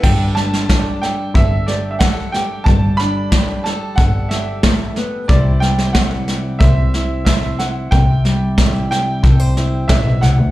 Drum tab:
CC |x---------------|----------------|----------------|----------------|
SD |o-ooo-o-o-o-o-o-|o-o-o-o-o-o-o-o-|o-ooo-o-o-o-o-o-|o-o-o-o-o-o-o-o-|
BD |o---o---o---o---|o---o---o---o---|o---o---o---o---|o---o---o---o---|